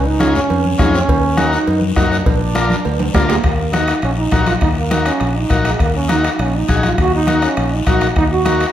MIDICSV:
0, 0, Header, 1, 6, 480
1, 0, Start_track
1, 0, Key_signature, -6, "minor"
1, 0, Tempo, 294840
1, 1770, Time_signature, 4, 2, 24, 8
1, 14196, End_track
2, 0, Start_track
2, 0, Title_t, "Transistor combo organ"
2, 0, Program_c, 0, 18
2, 316, Note_on_c, 0, 61, 77
2, 321, Note_on_c, 0, 65, 65
2, 331, Note_on_c, 0, 68, 79
2, 660, Note_off_c, 0, 61, 0
2, 662, Note_off_c, 0, 65, 0
2, 667, Note_off_c, 0, 68, 0
2, 1273, Note_on_c, 0, 61, 75
2, 1281, Note_on_c, 0, 65, 73
2, 1291, Note_on_c, 0, 68, 88
2, 1617, Note_off_c, 0, 61, 0
2, 1621, Note_off_c, 0, 65, 0
2, 1626, Note_off_c, 0, 68, 0
2, 2235, Note_on_c, 0, 63, 91
2, 2236, Note_on_c, 0, 66, 79
2, 2244, Note_on_c, 0, 70, 92
2, 2577, Note_off_c, 0, 63, 0
2, 2578, Note_off_c, 0, 66, 0
2, 2582, Note_off_c, 0, 70, 0
2, 3199, Note_on_c, 0, 63, 78
2, 3204, Note_on_c, 0, 66, 72
2, 3214, Note_on_c, 0, 70, 84
2, 3538, Note_off_c, 0, 63, 0
2, 3541, Note_off_c, 0, 66, 0
2, 3546, Note_off_c, 0, 70, 0
2, 4149, Note_on_c, 0, 62, 87
2, 4153, Note_on_c, 0, 65, 78
2, 4164, Note_on_c, 0, 70, 87
2, 4493, Note_off_c, 0, 62, 0
2, 4495, Note_off_c, 0, 65, 0
2, 4500, Note_off_c, 0, 70, 0
2, 5120, Note_on_c, 0, 62, 95
2, 5121, Note_on_c, 0, 65, 79
2, 5132, Note_on_c, 0, 70, 98
2, 5458, Note_off_c, 0, 62, 0
2, 5458, Note_off_c, 0, 65, 0
2, 5464, Note_off_c, 0, 70, 0
2, 6068, Note_on_c, 0, 63, 62
2, 6077, Note_on_c, 0, 66, 58
2, 6079, Note_on_c, 0, 70, 69
2, 6412, Note_off_c, 0, 63, 0
2, 6416, Note_off_c, 0, 66, 0
2, 6417, Note_off_c, 0, 70, 0
2, 7031, Note_on_c, 0, 63, 66
2, 7045, Note_on_c, 0, 66, 65
2, 7047, Note_on_c, 0, 70, 80
2, 7374, Note_off_c, 0, 63, 0
2, 7381, Note_off_c, 0, 66, 0
2, 7382, Note_off_c, 0, 70, 0
2, 7984, Note_on_c, 0, 63, 64
2, 7992, Note_on_c, 0, 66, 59
2, 7997, Note_on_c, 0, 70, 65
2, 8331, Note_off_c, 0, 63, 0
2, 8335, Note_off_c, 0, 66, 0
2, 8337, Note_off_c, 0, 70, 0
2, 8946, Note_on_c, 0, 63, 69
2, 8954, Note_on_c, 0, 66, 63
2, 8961, Note_on_c, 0, 70, 74
2, 9293, Note_off_c, 0, 63, 0
2, 9297, Note_off_c, 0, 66, 0
2, 9300, Note_off_c, 0, 70, 0
2, 9901, Note_on_c, 0, 63, 66
2, 9913, Note_on_c, 0, 66, 64
2, 9919, Note_on_c, 0, 70, 74
2, 10251, Note_off_c, 0, 63, 0
2, 10257, Note_off_c, 0, 66, 0
2, 10260, Note_off_c, 0, 70, 0
2, 10877, Note_on_c, 0, 63, 70
2, 10888, Note_on_c, 0, 66, 61
2, 10891, Note_on_c, 0, 68, 76
2, 11220, Note_off_c, 0, 63, 0
2, 11225, Note_off_c, 0, 66, 0
2, 11226, Note_off_c, 0, 68, 0
2, 11843, Note_on_c, 0, 63, 66
2, 11851, Note_on_c, 0, 66, 54
2, 11854, Note_on_c, 0, 70, 76
2, 12183, Note_off_c, 0, 63, 0
2, 12187, Note_off_c, 0, 66, 0
2, 12189, Note_off_c, 0, 70, 0
2, 12806, Note_on_c, 0, 63, 70
2, 12814, Note_on_c, 0, 66, 63
2, 12818, Note_on_c, 0, 70, 72
2, 13146, Note_off_c, 0, 63, 0
2, 13150, Note_off_c, 0, 66, 0
2, 13152, Note_off_c, 0, 70, 0
2, 13753, Note_on_c, 0, 63, 65
2, 13760, Note_on_c, 0, 66, 60
2, 13768, Note_on_c, 0, 70, 67
2, 14100, Note_off_c, 0, 63, 0
2, 14104, Note_off_c, 0, 66, 0
2, 14108, Note_off_c, 0, 70, 0
2, 14196, End_track
3, 0, Start_track
3, 0, Title_t, "Trombone"
3, 0, Program_c, 1, 57
3, 105, Note_on_c, 1, 63, 105
3, 578, Note_off_c, 1, 63, 0
3, 591, Note_on_c, 1, 61, 98
3, 1298, Note_on_c, 1, 63, 87
3, 1322, Note_off_c, 1, 61, 0
3, 1528, Note_off_c, 1, 63, 0
3, 1538, Note_on_c, 1, 61, 103
3, 2427, Note_off_c, 1, 61, 0
3, 2495, Note_on_c, 1, 63, 94
3, 2937, Note_off_c, 1, 63, 0
3, 3203, Note_on_c, 1, 63, 75
3, 3312, Note_off_c, 1, 63, 0
3, 3443, Note_on_c, 1, 62, 92
3, 5298, Note_off_c, 1, 62, 0
3, 5371, Note_on_c, 1, 56, 81
3, 5477, Note_off_c, 1, 56, 0
3, 5619, Note_on_c, 1, 58, 82
3, 6096, Note_on_c, 1, 63, 77
3, 6120, Note_off_c, 1, 58, 0
3, 6330, Note_off_c, 1, 63, 0
3, 6337, Note_on_c, 1, 63, 82
3, 6554, Note_off_c, 1, 63, 0
3, 6581, Note_on_c, 1, 61, 81
3, 6685, Note_off_c, 1, 61, 0
3, 6818, Note_on_c, 1, 63, 84
3, 7258, Note_off_c, 1, 63, 0
3, 7281, Note_on_c, 1, 65, 78
3, 7390, Note_off_c, 1, 65, 0
3, 7525, Note_on_c, 1, 63, 94
3, 7633, Note_off_c, 1, 63, 0
3, 7779, Note_on_c, 1, 58, 88
3, 8219, Note_off_c, 1, 58, 0
3, 8244, Note_on_c, 1, 61, 84
3, 8748, Note_on_c, 1, 63, 84
3, 8773, Note_off_c, 1, 61, 0
3, 8974, Note_off_c, 1, 63, 0
3, 8983, Note_on_c, 1, 58, 73
3, 9088, Note_off_c, 1, 58, 0
3, 9225, Note_on_c, 1, 56, 74
3, 9440, Note_off_c, 1, 56, 0
3, 9478, Note_on_c, 1, 58, 92
3, 9687, Note_off_c, 1, 58, 0
3, 9701, Note_on_c, 1, 61, 84
3, 9918, Note_off_c, 1, 61, 0
3, 9956, Note_on_c, 1, 63, 82
3, 10166, Note_off_c, 1, 63, 0
3, 10185, Note_on_c, 1, 63, 78
3, 10431, Note_on_c, 1, 61, 82
3, 10456, Note_off_c, 1, 63, 0
3, 10678, Note_on_c, 1, 63, 87
3, 10702, Note_off_c, 1, 61, 0
3, 11144, Note_off_c, 1, 63, 0
3, 11151, Note_on_c, 1, 65, 93
3, 11394, Note_on_c, 1, 66, 109
3, 11419, Note_off_c, 1, 65, 0
3, 11622, Note_off_c, 1, 66, 0
3, 11644, Note_on_c, 1, 63, 102
3, 12110, Note_on_c, 1, 61, 90
3, 12134, Note_off_c, 1, 63, 0
3, 12585, Note_on_c, 1, 63, 79
3, 12610, Note_off_c, 1, 61, 0
3, 12805, Note_off_c, 1, 63, 0
3, 12815, Note_on_c, 1, 66, 80
3, 13149, Note_off_c, 1, 66, 0
3, 13305, Note_on_c, 1, 63, 104
3, 13411, Note_off_c, 1, 63, 0
3, 13549, Note_on_c, 1, 66, 99
3, 14071, Note_off_c, 1, 66, 0
3, 14196, End_track
4, 0, Start_track
4, 0, Title_t, "Fingered electric bass"
4, 0, Program_c, 2, 33
4, 0, Note_on_c, 2, 37, 94
4, 623, Note_off_c, 2, 37, 0
4, 818, Note_on_c, 2, 41, 91
4, 1199, Note_off_c, 2, 41, 0
4, 1293, Note_on_c, 2, 41, 101
4, 1675, Note_off_c, 2, 41, 0
4, 1769, Note_on_c, 2, 39, 97
4, 2536, Note_off_c, 2, 39, 0
4, 2730, Note_on_c, 2, 42, 87
4, 3113, Note_off_c, 2, 42, 0
4, 3204, Note_on_c, 2, 42, 102
4, 3589, Note_off_c, 2, 42, 0
4, 3680, Note_on_c, 2, 34, 94
4, 4449, Note_off_c, 2, 34, 0
4, 4654, Note_on_c, 2, 38, 92
4, 5034, Note_off_c, 2, 38, 0
4, 5122, Note_on_c, 2, 38, 93
4, 5507, Note_off_c, 2, 38, 0
4, 5603, Note_on_c, 2, 39, 83
4, 6372, Note_off_c, 2, 39, 0
4, 6559, Note_on_c, 2, 34, 96
4, 6945, Note_off_c, 2, 34, 0
4, 7036, Note_on_c, 2, 34, 84
4, 7423, Note_off_c, 2, 34, 0
4, 7515, Note_on_c, 2, 39, 86
4, 8288, Note_off_c, 2, 39, 0
4, 8480, Note_on_c, 2, 34, 103
4, 8867, Note_off_c, 2, 34, 0
4, 8959, Note_on_c, 2, 34, 84
4, 9347, Note_off_c, 2, 34, 0
4, 9437, Note_on_c, 2, 39, 81
4, 10210, Note_off_c, 2, 39, 0
4, 10408, Note_on_c, 2, 34, 93
4, 10793, Note_off_c, 2, 34, 0
4, 10887, Note_on_c, 2, 34, 87
4, 11273, Note_off_c, 2, 34, 0
4, 11364, Note_on_c, 2, 39, 90
4, 12135, Note_off_c, 2, 39, 0
4, 12332, Note_on_c, 2, 34, 91
4, 12716, Note_off_c, 2, 34, 0
4, 12807, Note_on_c, 2, 34, 84
4, 13194, Note_off_c, 2, 34, 0
4, 13288, Note_on_c, 2, 39, 83
4, 14060, Note_off_c, 2, 39, 0
4, 14196, End_track
5, 0, Start_track
5, 0, Title_t, "Two-headed folk drums"
5, 335, Note_on_c, 9, 37, 80
5, 498, Note_off_c, 9, 37, 0
5, 1290, Note_on_c, 9, 36, 80
5, 1291, Note_on_c, 9, 37, 88
5, 1453, Note_off_c, 9, 36, 0
5, 1454, Note_off_c, 9, 37, 0
5, 1766, Note_on_c, 9, 36, 82
5, 1929, Note_off_c, 9, 36, 0
5, 2238, Note_on_c, 9, 37, 86
5, 2400, Note_off_c, 9, 37, 0
5, 3197, Note_on_c, 9, 37, 89
5, 3203, Note_on_c, 9, 36, 83
5, 3360, Note_off_c, 9, 37, 0
5, 3366, Note_off_c, 9, 36, 0
5, 3683, Note_on_c, 9, 36, 86
5, 3846, Note_off_c, 9, 36, 0
5, 4161, Note_on_c, 9, 37, 88
5, 4324, Note_off_c, 9, 37, 0
5, 5121, Note_on_c, 9, 37, 78
5, 5123, Note_on_c, 9, 36, 83
5, 5284, Note_off_c, 9, 37, 0
5, 5285, Note_off_c, 9, 36, 0
5, 5356, Note_on_c, 9, 37, 78
5, 5519, Note_off_c, 9, 37, 0
5, 5600, Note_on_c, 9, 37, 77
5, 5602, Note_on_c, 9, 36, 79
5, 5763, Note_off_c, 9, 37, 0
5, 5765, Note_off_c, 9, 36, 0
5, 6085, Note_on_c, 9, 37, 80
5, 6248, Note_off_c, 9, 37, 0
5, 6321, Note_on_c, 9, 37, 77
5, 6484, Note_off_c, 9, 37, 0
5, 6560, Note_on_c, 9, 37, 65
5, 6723, Note_off_c, 9, 37, 0
5, 7037, Note_on_c, 9, 37, 77
5, 7038, Note_on_c, 9, 36, 82
5, 7200, Note_off_c, 9, 37, 0
5, 7201, Note_off_c, 9, 36, 0
5, 7283, Note_on_c, 9, 37, 80
5, 7446, Note_off_c, 9, 37, 0
5, 7517, Note_on_c, 9, 36, 76
5, 7523, Note_on_c, 9, 37, 79
5, 7680, Note_off_c, 9, 36, 0
5, 7686, Note_off_c, 9, 37, 0
5, 7995, Note_on_c, 9, 37, 75
5, 8158, Note_off_c, 9, 37, 0
5, 8230, Note_on_c, 9, 37, 86
5, 8393, Note_off_c, 9, 37, 0
5, 8466, Note_on_c, 9, 37, 71
5, 8628, Note_off_c, 9, 37, 0
5, 8956, Note_on_c, 9, 37, 77
5, 8960, Note_on_c, 9, 36, 79
5, 9119, Note_off_c, 9, 37, 0
5, 9123, Note_off_c, 9, 36, 0
5, 9196, Note_on_c, 9, 37, 78
5, 9359, Note_off_c, 9, 37, 0
5, 9432, Note_on_c, 9, 37, 81
5, 9442, Note_on_c, 9, 36, 83
5, 9595, Note_off_c, 9, 37, 0
5, 9604, Note_off_c, 9, 36, 0
5, 9919, Note_on_c, 9, 37, 84
5, 10082, Note_off_c, 9, 37, 0
5, 10170, Note_on_c, 9, 37, 83
5, 10332, Note_off_c, 9, 37, 0
5, 10414, Note_on_c, 9, 37, 65
5, 10577, Note_off_c, 9, 37, 0
5, 10890, Note_on_c, 9, 36, 77
5, 10895, Note_on_c, 9, 37, 75
5, 11053, Note_off_c, 9, 36, 0
5, 11058, Note_off_c, 9, 37, 0
5, 11125, Note_on_c, 9, 37, 78
5, 11288, Note_off_c, 9, 37, 0
5, 11366, Note_on_c, 9, 37, 82
5, 11367, Note_on_c, 9, 36, 71
5, 11528, Note_off_c, 9, 37, 0
5, 11530, Note_off_c, 9, 36, 0
5, 11839, Note_on_c, 9, 37, 75
5, 12002, Note_off_c, 9, 37, 0
5, 12088, Note_on_c, 9, 37, 77
5, 12251, Note_off_c, 9, 37, 0
5, 12326, Note_on_c, 9, 37, 72
5, 12489, Note_off_c, 9, 37, 0
5, 12808, Note_on_c, 9, 36, 79
5, 12809, Note_on_c, 9, 37, 80
5, 12971, Note_off_c, 9, 36, 0
5, 12972, Note_off_c, 9, 37, 0
5, 13052, Note_on_c, 9, 37, 79
5, 13214, Note_off_c, 9, 37, 0
5, 13291, Note_on_c, 9, 36, 75
5, 13293, Note_on_c, 9, 37, 81
5, 13453, Note_off_c, 9, 36, 0
5, 13455, Note_off_c, 9, 37, 0
5, 13770, Note_on_c, 9, 37, 80
5, 13933, Note_off_c, 9, 37, 0
5, 14016, Note_on_c, 9, 37, 81
5, 14179, Note_off_c, 9, 37, 0
5, 14196, End_track
6, 0, Start_track
6, 0, Title_t, "Drums"
6, 330, Note_on_c, 9, 63, 98
6, 334, Note_on_c, 9, 73, 71
6, 493, Note_off_c, 9, 63, 0
6, 497, Note_off_c, 9, 73, 0
6, 575, Note_on_c, 9, 73, 71
6, 578, Note_on_c, 9, 64, 70
6, 737, Note_off_c, 9, 73, 0
6, 741, Note_off_c, 9, 64, 0
6, 814, Note_on_c, 9, 63, 33
6, 815, Note_on_c, 9, 56, 77
6, 819, Note_on_c, 9, 74, 70
6, 977, Note_off_c, 9, 56, 0
6, 977, Note_off_c, 9, 63, 0
6, 981, Note_off_c, 9, 74, 0
6, 1056, Note_on_c, 9, 63, 67
6, 1219, Note_off_c, 9, 63, 0
6, 1293, Note_on_c, 9, 63, 77
6, 1293, Note_on_c, 9, 64, 71
6, 1296, Note_on_c, 9, 66, 74
6, 1296, Note_on_c, 9, 73, 74
6, 1455, Note_off_c, 9, 63, 0
6, 1455, Note_off_c, 9, 64, 0
6, 1459, Note_off_c, 9, 66, 0
6, 1459, Note_off_c, 9, 73, 0
6, 1539, Note_on_c, 9, 73, 76
6, 1702, Note_off_c, 9, 73, 0
6, 1769, Note_on_c, 9, 63, 34
6, 1772, Note_on_c, 9, 74, 73
6, 1778, Note_on_c, 9, 56, 106
6, 1932, Note_off_c, 9, 63, 0
6, 1935, Note_off_c, 9, 74, 0
6, 1940, Note_off_c, 9, 56, 0
6, 2243, Note_on_c, 9, 63, 100
6, 2255, Note_on_c, 9, 73, 67
6, 2406, Note_off_c, 9, 63, 0
6, 2418, Note_off_c, 9, 73, 0
6, 2486, Note_on_c, 9, 73, 66
6, 2648, Note_off_c, 9, 73, 0
6, 2718, Note_on_c, 9, 63, 35
6, 2724, Note_on_c, 9, 74, 70
6, 2726, Note_on_c, 9, 56, 82
6, 2881, Note_off_c, 9, 63, 0
6, 2887, Note_off_c, 9, 74, 0
6, 2888, Note_off_c, 9, 56, 0
6, 2953, Note_on_c, 9, 63, 66
6, 3116, Note_off_c, 9, 63, 0
6, 3202, Note_on_c, 9, 63, 73
6, 3202, Note_on_c, 9, 66, 78
6, 3211, Note_on_c, 9, 73, 72
6, 3365, Note_off_c, 9, 63, 0
6, 3365, Note_off_c, 9, 66, 0
6, 3373, Note_off_c, 9, 73, 0
6, 3453, Note_on_c, 9, 73, 71
6, 3616, Note_off_c, 9, 73, 0
6, 3681, Note_on_c, 9, 63, 37
6, 3684, Note_on_c, 9, 56, 99
6, 3688, Note_on_c, 9, 74, 74
6, 3844, Note_off_c, 9, 63, 0
6, 3847, Note_off_c, 9, 56, 0
6, 3851, Note_off_c, 9, 74, 0
6, 4154, Note_on_c, 9, 63, 95
6, 4168, Note_on_c, 9, 73, 71
6, 4317, Note_off_c, 9, 63, 0
6, 4330, Note_off_c, 9, 73, 0
6, 4396, Note_on_c, 9, 63, 73
6, 4412, Note_on_c, 9, 73, 68
6, 4559, Note_off_c, 9, 63, 0
6, 4575, Note_off_c, 9, 73, 0
6, 4635, Note_on_c, 9, 63, 37
6, 4642, Note_on_c, 9, 56, 82
6, 4651, Note_on_c, 9, 74, 69
6, 4798, Note_off_c, 9, 63, 0
6, 4805, Note_off_c, 9, 56, 0
6, 4814, Note_off_c, 9, 74, 0
6, 4876, Note_on_c, 9, 63, 72
6, 4878, Note_on_c, 9, 65, 83
6, 5039, Note_off_c, 9, 63, 0
6, 5041, Note_off_c, 9, 65, 0
6, 5116, Note_on_c, 9, 63, 75
6, 5116, Note_on_c, 9, 64, 71
6, 5120, Note_on_c, 9, 66, 111
6, 5132, Note_on_c, 9, 73, 73
6, 5278, Note_off_c, 9, 63, 0
6, 5278, Note_off_c, 9, 64, 0
6, 5282, Note_off_c, 9, 66, 0
6, 5295, Note_off_c, 9, 73, 0
6, 5367, Note_on_c, 9, 66, 91
6, 5367, Note_on_c, 9, 73, 73
6, 5530, Note_off_c, 9, 66, 0
6, 5530, Note_off_c, 9, 73, 0
6, 5595, Note_on_c, 9, 65, 65
6, 5615, Note_on_c, 9, 74, 63
6, 5758, Note_off_c, 9, 65, 0
6, 5778, Note_off_c, 9, 74, 0
6, 6077, Note_on_c, 9, 65, 68
6, 6081, Note_on_c, 9, 63, 91
6, 6091, Note_on_c, 9, 73, 69
6, 6240, Note_off_c, 9, 65, 0
6, 6244, Note_off_c, 9, 63, 0
6, 6253, Note_off_c, 9, 73, 0
6, 6312, Note_on_c, 9, 65, 65
6, 6324, Note_on_c, 9, 73, 64
6, 6475, Note_off_c, 9, 65, 0
6, 6487, Note_off_c, 9, 73, 0
6, 6551, Note_on_c, 9, 65, 60
6, 6562, Note_on_c, 9, 74, 65
6, 6713, Note_off_c, 9, 65, 0
6, 6725, Note_off_c, 9, 74, 0
6, 6793, Note_on_c, 9, 63, 30
6, 6956, Note_off_c, 9, 63, 0
6, 7027, Note_on_c, 9, 65, 61
6, 7027, Note_on_c, 9, 66, 68
6, 7028, Note_on_c, 9, 63, 66
6, 7038, Note_on_c, 9, 73, 62
6, 7189, Note_off_c, 9, 65, 0
6, 7189, Note_off_c, 9, 66, 0
6, 7191, Note_off_c, 9, 63, 0
6, 7201, Note_off_c, 9, 73, 0
6, 7269, Note_on_c, 9, 65, 66
6, 7272, Note_on_c, 9, 63, 70
6, 7277, Note_on_c, 9, 73, 63
6, 7432, Note_off_c, 9, 65, 0
6, 7435, Note_off_c, 9, 63, 0
6, 7440, Note_off_c, 9, 73, 0
6, 7507, Note_on_c, 9, 65, 67
6, 7521, Note_on_c, 9, 74, 62
6, 7670, Note_off_c, 9, 65, 0
6, 7684, Note_off_c, 9, 74, 0
6, 7994, Note_on_c, 9, 73, 69
6, 7997, Note_on_c, 9, 63, 96
6, 7997, Note_on_c, 9, 65, 64
6, 8157, Note_off_c, 9, 73, 0
6, 8160, Note_off_c, 9, 63, 0
6, 8160, Note_off_c, 9, 65, 0
6, 8236, Note_on_c, 9, 65, 70
6, 8238, Note_on_c, 9, 73, 65
6, 8398, Note_off_c, 9, 65, 0
6, 8401, Note_off_c, 9, 73, 0
6, 8475, Note_on_c, 9, 65, 62
6, 8477, Note_on_c, 9, 74, 60
6, 8638, Note_off_c, 9, 65, 0
6, 8640, Note_off_c, 9, 74, 0
6, 8726, Note_on_c, 9, 63, 31
6, 8889, Note_off_c, 9, 63, 0
6, 8963, Note_on_c, 9, 65, 69
6, 8964, Note_on_c, 9, 73, 65
6, 8967, Note_on_c, 9, 63, 63
6, 9126, Note_off_c, 9, 65, 0
6, 9127, Note_off_c, 9, 73, 0
6, 9130, Note_off_c, 9, 63, 0
6, 9200, Note_on_c, 9, 65, 71
6, 9208, Note_on_c, 9, 73, 65
6, 9363, Note_off_c, 9, 65, 0
6, 9370, Note_off_c, 9, 73, 0
6, 9446, Note_on_c, 9, 74, 69
6, 9447, Note_on_c, 9, 63, 30
6, 9447, Note_on_c, 9, 65, 66
6, 9609, Note_off_c, 9, 74, 0
6, 9610, Note_off_c, 9, 63, 0
6, 9610, Note_off_c, 9, 65, 0
6, 9918, Note_on_c, 9, 63, 97
6, 9929, Note_on_c, 9, 65, 65
6, 9931, Note_on_c, 9, 73, 69
6, 10081, Note_off_c, 9, 63, 0
6, 10092, Note_off_c, 9, 65, 0
6, 10094, Note_off_c, 9, 73, 0
6, 10166, Note_on_c, 9, 65, 66
6, 10167, Note_on_c, 9, 73, 66
6, 10329, Note_off_c, 9, 65, 0
6, 10329, Note_off_c, 9, 73, 0
6, 10404, Note_on_c, 9, 74, 67
6, 10408, Note_on_c, 9, 65, 66
6, 10567, Note_off_c, 9, 74, 0
6, 10570, Note_off_c, 9, 65, 0
6, 10644, Note_on_c, 9, 63, 31
6, 10807, Note_off_c, 9, 63, 0
6, 10882, Note_on_c, 9, 65, 67
6, 10883, Note_on_c, 9, 63, 65
6, 10884, Note_on_c, 9, 73, 69
6, 11045, Note_off_c, 9, 65, 0
6, 11046, Note_off_c, 9, 63, 0
6, 11047, Note_off_c, 9, 73, 0
6, 11124, Note_on_c, 9, 65, 62
6, 11129, Note_on_c, 9, 73, 69
6, 11133, Note_on_c, 9, 63, 68
6, 11287, Note_off_c, 9, 65, 0
6, 11292, Note_off_c, 9, 73, 0
6, 11296, Note_off_c, 9, 63, 0
6, 11366, Note_on_c, 9, 65, 66
6, 11368, Note_on_c, 9, 63, 29
6, 11369, Note_on_c, 9, 74, 67
6, 11529, Note_off_c, 9, 65, 0
6, 11531, Note_off_c, 9, 63, 0
6, 11532, Note_off_c, 9, 74, 0
6, 11847, Note_on_c, 9, 63, 91
6, 11847, Note_on_c, 9, 73, 67
6, 11849, Note_on_c, 9, 65, 65
6, 12010, Note_off_c, 9, 63, 0
6, 12010, Note_off_c, 9, 73, 0
6, 12012, Note_off_c, 9, 65, 0
6, 12083, Note_on_c, 9, 65, 63
6, 12084, Note_on_c, 9, 73, 66
6, 12246, Note_off_c, 9, 65, 0
6, 12247, Note_off_c, 9, 73, 0
6, 12325, Note_on_c, 9, 65, 70
6, 12330, Note_on_c, 9, 74, 59
6, 12487, Note_off_c, 9, 65, 0
6, 12492, Note_off_c, 9, 74, 0
6, 12570, Note_on_c, 9, 63, 33
6, 12733, Note_off_c, 9, 63, 0
6, 12804, Note_on_c, 9, 63, 68
6, 12806, Note_on_c, 9, 65, 66
6, 12813, Note_on_c, 9, 73, 65
6, 12966, Note_off_c, 9, 63, 0
6, 12968, Note_off_c, 9, 65, 0
6, 12976, Note_off_c, 9, 73, 0
6, 13044, Note_on_c, 9, 65, 67
6, 13054, Note_on_c, 9, 73, 61
6, 13207, Note_off_c, 9, 65, 0
6, 13217, Note_off_c, 9, 73, 0
6, 13284, Note_on_c, 9, 65, 61
6, 13287, Note_on_c, 9, 63, 32
6, 13292, Note_on_c, 9, 74, 61
6, 13447, Note_off_c, 9, 65, 0
6, 13450, Note_off_c, 9, 63, 0
6, 13454, Note_off_c, 9, 74, 0
6, 13765, Note_on_c, 9, 65, 71
6, 13772, Note_on_c, 9, 63, 86
6, 13774, Note_on_c, 9, 73, 69
6, 13928, Note_off_c, 9, 65, 0
6, 13934, Note_off_c, 9, 63, 0
6, 13937, Note_off_c, 9, 73, 0
6, 14009, Note_on_c, 9, 65, 61
6, 14010, Note_on_c, 9, 73, 68
6, 14172, Note_off_c, 9, 65, 0
6, 14173, Note_off_c, 9, 73, 0
6, 14196, End_track
0, 0, End_of_file